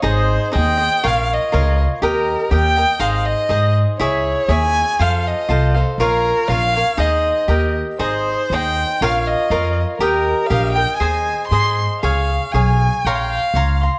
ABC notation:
X:1
M:2/4
L:1/16
Q:1/4=120
K:Ab
V:1 name="Violin"
c4 g4 | f2 e4 z2 | B4 g4 | f2 e4 z2 |
d4 a4 | f2 e4 z2 | B4 f4 | e6 z2 |
c4 g4 | f2 e4 z2 | B4 f2 g2 | a4 c'3 z |
f4 a4 | g/2 f/2 g f4 z2 |]
V:2 name="Cavaquinho"
[EAce]4 [EAce]2 [Ace]2 | [FBdf]4 [FBdf]4 | [GBeg]4 [GBeg]2 [Beg]2 | [EAce]4 [EAce]4 |
[_FAd_f]4 [FAdf]4 | [F=Acf]4 [FAcf]2 [Acf]2 | [FBdf]4 [FBdf]2 [Bdf]2 | [EAce]4 [GBeg]4 |
[EAce]4 [EAce]4 | [FBdf]4 [FBdf]4 | [GBeg]4 [GBeg]2 [Beg]2 | [Acea]4 [Acea]4 |
[Adfa]4 [Adfa]4 | [dfbc']4 [dfbc']2 [fbc']2 |]
V:3 name="Upright bass" clef=bass
A,,,4 E,,4 | B,,,4 D,,4 | E,,4 E,,4 | A,,,4 A,,4 |
D,,4 E,,4 | F,,4 C,,4 | B,,,4 B,,,4 | E,,4 E,,4 |
A,,,4 E,,4 | B,,,4 F,,4 | E,,4 B,,,4 | E,,4 A,,4 |
D,,4 _C,,4 | B,,,4 D,,4 |]